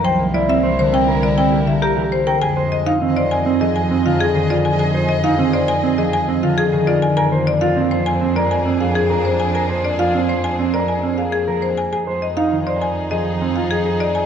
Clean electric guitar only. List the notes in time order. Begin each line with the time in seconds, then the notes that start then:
0.04 C5
0.34 E4
0.49 C4
0.63 C5
0.93 C4
1.08 A#4
1.38 C4
1.52 G4
1.82 A#4
1.97 G4
2.27 A#4
2.42 G#4
2.57 C5
2.86 D#4
3.01 C4
3.16 C5
3.46 C4
3.61 G#4
3.91 C4
4.05 F4
4.35 G#4
4.50 F4
4.79 G#4
4.94 C5
5.24 D#4
5.39 C4
5.54 C5
5.84 C4
5.99 G#4
6.28 C4
6.43 F4
6.72 G#4
6.87 F4
7.17 A#4
7.32 C5
7.62 F4
7.77 C4
7.92 C5
8.21 C4
8.36 A#4
8.66 C4
8.81 G#4
9.10 A#4
9.55 A#4
9.70 C5
9.99 F4
10.14 C4
10.29 C5
10.59 C4
10.74 A#4
11.03 C4
11.18 G#4
11.48 A#4
11.93 G#4
12.07 C5
12.37 D#4
12.67 C5
13.11 G#4
13.41 C4
13.56 F4
13.86 G#4